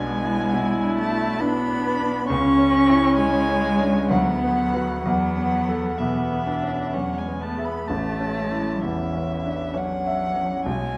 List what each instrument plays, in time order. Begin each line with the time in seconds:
Already playing: grand piano B1 D4, cello G#3, viola B3, violin G#5
0.25 grand piano E4
0.53 grand piano B2, viola E4
0.83 grand piano D4
0.98 cello A3, violin A5
1.12 grand piano E4
1.40 cello B3, grand piano D4, viola D4, violin B5
1.70 grand piano B4
2.01 grand piano D4
2.29 grand piano C#2, viola C#4, cello C#4, violin C#6
2.59 grand piano C#4
2.89 grand piano E4
3.17 grand piano C#3, cello G#3, violin G#5
3.49 grand piano C#4
3.80 grand piano D4
4.09 grand piano D2, cello F#3, viola B3, violin F#5
4.42 grand piano B3
4.74 grand piano F#4 B4
5.04 grand piano E2, cello F#3, viola B3, violin F#5
5.37 grand piano B3
5.69 grand piano A4
5.98 grand piano B2, cello E3, viola B3, violin E5
6.32 grand piano B3
6.47 viola D4
6.63 grand piano C#4
6.93 grand piano E2, cello F#3, viola C#4, violin F#5
7.18 cello G#3, violin G#5
7.26 grand piano B3
7.41 cello A3, viola B3, violin A5
7.58 grand piano G#4 E5
7.65 cello B3, violin B5
7.88 grand piano A1, cello A3, violin A5
8.20 grand piano C#4
8.52 grand piano E4
8.83 grand piano E2, cello E3, viola C#4, violin E5
9.14 grand piano C#4
9.45 grand piano D4
9.74 cello F#3, viola C#4, grand piano C#4, violin F#5
10.06 grand piano E5
10.36 grand piano C#4
10.65 grand piano B1, cello G#3, violin G#5